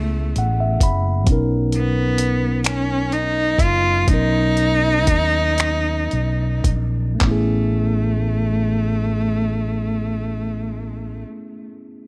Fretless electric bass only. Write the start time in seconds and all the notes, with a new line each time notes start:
Already playing: C#2
0.36 A1
0.81 F#1
1.27 B1
3.59 F#1
4.08 B1
5.08 D#2
6.13 B1
6.65 A#1
7.22 A1